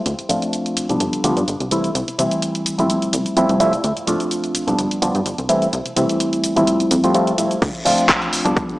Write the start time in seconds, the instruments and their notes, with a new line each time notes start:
0.06 analog synth bass D2, closed hi-hat, shaker
0.19 closed hi-hat, shaker
0.29 analog synth bass D1, reed electric piano F3 A3 C4 D4 F4, closed hi-hat, shaker
0.42 closed hi-hat, shaker
0.53 closed hi-hat, shaker
0.66 closed hi-hat, shaker
0.77 analog synth bass C2, closed hi-hat, shaker
0.89 analog synth bass C2, reed electric piano F3 G3 B3 D4 A4, closed hi-hat, shaker
1.00 analog synth bass G1, closed hi-hat, shaker
1.13 analog synth bass D2, closed hi-hat, shaker
1.24 analog synth bass D2, reed electric piano F3 G3 B3 D4 F4, closed hi-hat, shaker
1.37 analog synth bass G2, closed hi-hat, shaker
1.48 analog synth bass G1, closed hi-hat, shaker
1.60 analog synth bass C2, closed hi-hat, shaker
1.71 reed electric piano E3 G3 A3 C4 E4, closed hi-hat, shaker
1.84 closed hi-hat, shaker
1.95 analog synth bass C2, closed hi-hat, shaker
2.08 analog synth bass C3, closed hi-hat, shaker
2.18 analog synth bass C3, reed electric piano E3 G3 A3 C4 E4, closed hi-hat, shaker
2.31 closed hi-hat, shaker
2.42 closed hi-hat, shaker
2.55 closed hi-hat, shaker
2.66 analog synth bass A1, closed hi-hat, shaker
2.78 analog synth bass A1, reed electric piano F3 G3 A3 C4 E4, closed hi-hat, shaker
2.89 analog synth bass F2, closed hi-hat, shaker
3.02 analog synth bass C2, closed hi-hat, shaker
3.13 analog synth bass C2, closed hi-hat, shaker
3.26 analog synth bass F2, closed hi-hat, shaker
3.37 analog synth bass F2, reed electric piano F3 G3 A3 C4 E4, closed hi-hat, shaker
3.49 analog synth bass C2, closed hi-hat, shaker
3.60 reed electric piano F3 G3 A3 C4 E4, closed hi-hat, shaker
3.73 closed hi-hat, shaker
3.84 analog synth bass D2, closed hi-hat, shaker
3.97 closed hi-hat, shaker
4.07 analog synth bass D1, reed electric piano F3 A3 C4 D4 F4, closed hi-hat, shaker
4.20 closed hi-hat, shaker
4.31 closed hi-hat, shaker
4.44 closed hi-hat, shaker
4.55 analog synth bass C2, closed hi-hat, shaker
4.67 analog synth bass C2, reed electric piano F3 G3 B3 D4 A4, closed hi-hat, shaker
4.79 analog synth bass G1, closed hi-hat, shaker
4.91 analog synth bass D2, closed hi-hat, shaker
5.02 analog synth bass D2, reed electric piano F3 G3 B3 D4 F4, closed hi-hat, shaker
5.15 analog synth bass G2, closed hi-hat, shaker
5.26 analog synth bass G1, closed hi-hat, shaker
5.38 analog synth bass C2, closed hi-hat, shaker
5.49 reed electric piano E3 G3 A3 C4 E4, closed hi-hat, shaker
5.62 closed hi-hat, shaker
5.73 analog synth bass C2, closed hi-hat, shaker
5.86 analog synth bass C3, closed hi-hat, shaker
5.96 analog synth bass C3, reed electric piano E3 G3 A3 C4 E4, closed hi-hat, shaker
6.09 closed hi-hat, shaker
6.20 closed hi-hat, shaker
6.33 closed hi-hat, shaker
6.44 analog synth bass A1, closed hi-hat, shaker
6.56 analog synth bass A1, reed electric piano F3 G3 A3 C4 E4, closed hi-hat, shaker
6.67 closed hi-hat, shaker
6.80 analog synth bass F2, closed hi-hat, shaker
6.91 analog synth bass F2, closed hi-hat, shaker
7.04 reed electric piano F3 G3 A3 C4 F4, closed hi-hat, shaker
7.14 reed electric piano F3 G3 A3 C4 F4, closed hi-hat, shaker
7.27 closed hi-hat, shaker
7.38 analog synth bass F1, reed electric piano F3 G3 A3 C4 E4, closed hi-hat, shaker
7.51 closed hi-hat, shaker
7.62 analog synth bass D2, kick, closed hi-hat, crash, shaker
7.75 closed hi-hat, shaker
7.85 analog synth bass D1, reed electric piano F3 A3 C4 D4 F4, open hi-hat, shaker
7.98 closed hi-hat, shaker
8.09 kick, clap, closed hi-hat, shaker
8.22 closed hi-hat, shaker
8.33 analog synth bass C2, open hi-hat, shaker
8.45 analog synth bass C2, reed electric piano F3 G3 B3 D4 A4, closed hi-hat, shaker
8.57 analog synth bass G1, kick, closed hi-hat, shaker
8.69 analog synth bass D2, closed hi-hat, shaker